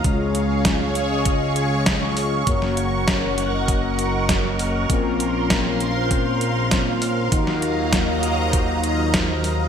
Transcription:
0.00 2.43 F5 medium
0.04 2.44 C#2 medium
0.04 1.07 G#3 medium
0.04 1.07 C#4 medium
0.04 1.07 F4 medium
0.04 1.07 G#4 medium
0.04 2.45 G#4 medium
0.04 1.07 C#5 loud
0.04 2.45 C#5 medium
0.04 4.86 C#6 medium
0.04 kick loud
0.04 closed hi-hat medium
0.35 closed hi-hat medium
0.65 kick loud
0.65 snare loud
0.65 closed hi-hat medium
0.95 closed hi-hat medium
1.11 2.44 G#3 medium
1.11 2.44 C#4 medium
1.11 2.44 F4 medium
1.11 2.44 G#4 medium
1.11 2.44 D#5 medium
1.25 kick loud
1.25 closed hi-hat loud
1.56 closed hi-hat medium
1.86 kick loud
1.86 snare loud
1.86 closed hi-hat medium
2.17 open hi-hat medium
2.47 4.87 F#1 medium
2.47 3.50 A#3 medium
2.47 3.50 C#4 medium
2.47 3.50 F#4 medium
2.47 3.50 A#4 medium
2.47 7.28 A#4 medium
2.47 3.50 C#5 loud
2.47 4.87 F#5 medium
2.47 kick loud
2.47 closed hi-hat medium
2.62 snare soft
2.77 closed hi-hat medium
3.08 kick loud
3.08 snare loud
3.08 closed hi-hat medium
3.38 closed hi-hat medium
3.53 4.86 A#3 medium
3.53 4.86 C#4 medium
3.53 4.86 F#4 medium
3.53 4.86 A#4 medium
3.53 4.86 D#5 medium
3.68 kick loud
3.68 closed hi-hat medium
3.99 closed hi-hat medium
4.29 kick loud
4.29 snare loud
4.29 closed hi-hat medium
4.59 open hi-hat medium
4.90 7.29 A#1 medium
4.90 5.92 A#3 medium
4.90 5.92 C4 medium
4.90 5.92 C#4 medium
4.90 5.92 F4 medium
4.90 5.92 A#4 loud
4.90 9.68 F5 medium
4.90 7.30 C6 medium
4.90 kick loud
4.90 closed hi-hat medium
5.20 closed hi-hat medium
5.50 kick loud
5.50 snare loud
5.50 closed hi-hat medium
5.80 closed hi-hat medium
5.96 7.28 A#3 medium
5.96 7.28 C4 medium
5.96 7.28 C#4 medium
5.96 7.29 F4 medium
5.96 7.28 C5 medium
6.11 kick loud
6.11 closed hi-hat medium
6.41 closed hi-hat medium
6.71 kick loud
6.71 snare loud
6.71 closed hi-hat medium
7.02 open hi-hat medium
7.32 9.68 D#2 medium
7.32 9.68 F#3 medium
7.32 8.35 A#3 medium
7.32 8.35 D#4 medium
7.32 8.35 F4 medium
7.32 8.35 F#4 medium
7.32 8.35 A#4 loud
7.32 9.68 D#5 medium
7.32 9.68 A#5 medium
7.32 kick loud
7.32 closed hi-hat medium
7.47 snare soft
7.62 closed hi-hat medium
7.93 kick loud
7.93 snare loud
7.93 closed hi-hat medium
8.23 closed hi-hat medium
8.38 9.68 A#3 medium
8.38 9.68 D#4 medium
8.38 9.68 F4 medium
8.38 9.68 F#4 medium
8.38 9.68 C5 medium
8.53 kick loud
8.53 closed hi-hat medium
8.84 closed hi-hat medium
9.14 kick loud
9.14 snare loud
9.14 closed hi-hat medium
9.44 open hi-hat medium

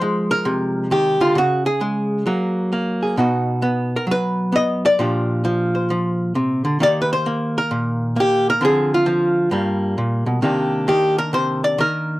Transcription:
0.00 0.91 F3 medium
0.00 1.35 G#3 medium
0.00 1.35 D#4 soft
0.00 1.20 F4 soft
0.00 0.31 C5 loud
0.31 0.91 A#4 medium
0.45 1.34 C3 medium
0.91 1.20 D#3 medium
0.91 1.37 G4 medium
1.21 1.36 D3 soft
1.21 1.37 F4 medium
1.35 2.24 C#3 medium
1.35 1.66 F#4 medium
1.66 3.01 G#4 medium
1.81 2.25 G#3 medium
2.26 3.15 F#3 medium
2.26 2.72 A#3 soft
2.73 3.19 A#3 medium
3.03 3.16 G#4 soft
3.17 4.97 B2 medium
3.17 3.61 B3 soft
3.17 4.98 D#4 soft
3.17 3.93 F#4 soft
3.62 4.51 B3 medium
3.96 4.05 A#4 medium
4.07 4.96 F#3 medium
4.11 4.55 B4 medium
4.52 4.96 B3 medium
4.52 4.84 D#5 loud
4.86 5.74 D5 loud
4.99 6.78 A#2 medium
4.99 5.43 F3 soft
4.99 6.79 D4 soft
4.99 6.79 G4 soft
5.45 5.89 F3 medium
5.75 6.83 C5 soft
5.90 6.35 F3 medium
6.35 6.64 C3 medium
6.65 6.80 D3 medium
6.80 8.60 D#3 medium
6.80 7.25 A#3 soft
6.80 8.60 D#4 soft
6.80 8.19 G4 soft
6.80 7.01 D5 loud
7.02 7.10 B4 medium
7.13 7.57 C5 medium
7.26 8.15 A#3 medium
7.58 8.18 A#4 medium
7.71 8.60 A#2 medium
8.16 8.60 A#3 medium
8.16 8.48 G4 medium
8.50 8.64 A#4 medium
8.61 9.50 D3 medium
8.61 9.05 F3 soft
8.61 9.51 C4 soft
8.61 8.93 G#4 medium
8.94 10.44 F4 medium
9.06 9.52 F3 medium
9.51 9.97 G2 medium
9.51 10.41 G3 soft
9.51 10.42 A#3 soft
9.98 10.26 A#2 medium
10.26 10.42 B2 medium
10.42 10.88 C3 medium
10.42 10.87 D#3 soft
10.42 12.20 A#3 soft
10.42 12.20 D4 soft
10.42 10.87 G4 soft
10.88 11.77 D#3 medium
10.88 11.18 G4 medium
11.18 11.34 A#4 medium
11.33 11.79 C3 medium
11.33 11.63 C5 medium
11.64 11.79 D5 medium
11.78 12.20 D#3 medium
11.78 12.20 A#4 loud

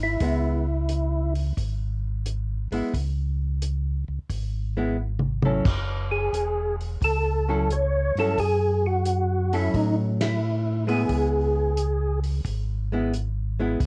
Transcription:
0.00 0.17 G#1 medium
0.00 1.34 E4 medium
0.20 1.53 C#2 medium
0.20 0.63 G#3 soft
0.20 0.64 B3 soft
0.20 0.64 E4 soft
0.20 kick soft
0.20 open hi-hat soft
0.89 closed hi-hat soft
1.35 open hi-hat soft
1.57 2.68 G#1 medium
1.57 kick soft
1.57 open hi-hat soft
2.26 closed hi-hat soft
2.71 2.82 G#1 soft
2.71 2.91 G#3 soft
2.71 2.92 B3 soft
2.71 2.92 E4 medium
2.71 open hi-hat soft
2.94 4.04 C#2 medium
2.94 kick soft
2.94 open hi-hat soft
3.62 closed hi-hat soft
4.08 4.19 C#2 soft
4.29 5.62 G#1 medium
4.29 kick soft
4.29 open hi-hat soft
4.77 4.96 G#3 medium
4.77 4.96 B3 soft
4.77 4.96 E4 medium
5.19 mid tom soft
5.43 5.64 F#3 soft
5.43 5.64 C#4 medium
5.43 5.64 E4 medium
5.43 5.64 A4 medium
5.43 mid tom medium
5.65 6.30 F#1 medium
5.65 kick medium
5.65 crash medium
6.11 6.76 G#4 medium
6.33 6.97 E1 medium
6.33 closed hi-hat soft
6.81 open hi-hat soft
7.01 8.12 C#2 medium
7.01 7.73 A4 medium
7.01 kick soft
7.01 open hi-hat soft
7.49 7.68 F#3 soft
7.49 7.68 C#4 medium
7.49 7.68 E4 medium
7.49 7.68 A4 medium
7.70 8.19 C#5 loud
7.70 closed hi-hat soft
8.15 8.36 G2 medium
8.15 8.36 F#3 soft
8.15 8.37 C#4 soft
8.15 8.37 E4 soft
8.15 open hi-hat soft
8.19 8.40 A4 medium
8.19 8.37 A4 medium
8.37 9.69 F#2 medium
8.37 8.86 G#4 medium
8.37 kick soft
8.37 open hi-hat soft
8.86 9.55 F#4 medium
9.05 closed hi-hat soft
9.53 10.38 F#3 medium
9.53 10.38 C#4 medium
9.53 9.76 E4 medium
9.53 10.38 A4 medium
9.53 open hi-hat soft
9.74 11.05 A2 medium
9.74 9.95 D#4 medium
9.74 kick soft
9.74 open hi-hat soft
10.20 10.84 E4 medium
10.20 snare medium
10.20 ride medium
10.87 11.72 G#3 medium
10.87 11.73 B3 medium
10.87 11.73 E4 medium
10.87 12.20 G#4 medium
10.87 open hi-hat soft
11.09 12.41 C#2 medium
11.09 kick soft
11.09 open hi-hat soft
11.77 closed hi-hat soft
12.24 open hi-hat soft
12.45 13.76 G#1 medium
12.45 kick soft
12.45 open hi-hat soft
12.92 13.11 G#3 soft
12.92 13.12 B3 medium
12.92 13.12 E4 soft
13.13 closed hi-hat soft
13.60 13.79 G#3 medium
13.60 13.79 B3 medium
13.60 13.79 E4 medium
13.80 13.86 C#2 medium
13.80 kick soft
13.80 open hi-hat soft

